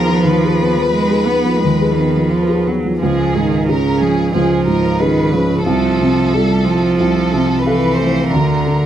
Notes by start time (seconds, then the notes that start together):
Already playing: D#2 F3 B3 G#4 A#4
0.09 F3
0.21 D#2 B4
0.44 G#4
0.61 B3
0.77 F3
0.92 G#3
1.10 G#4
1.26 B3
1.45 F3
1.58 G#3
1.64 D#2
1.81 G#4
1.93 D#3
1.99 B3
2.17 F3
2.30 F3
2.49 G#4
2.66 F#3 B3
2.85 F3
3.00 C#2 F3 G#4
3.34 G#2 D#3
3.67 C#3 C#4 G#4 A#4
4.01 F3 G#4
4.32 C#2 F3 G#4
4.67 G#2 A#4
4.99 D#3 C#4 G#4 B4
5.34 C#3 F3
5.64 C2 F3 A4
6.00 C3
6.33 G3 F4 A4
6.63 F3
6.97 C2 A4
7.33 C3
7.63 E3 A4 B4 F5
7.96 A3 C5
8.29 D2 D3 A#4
8.66 D3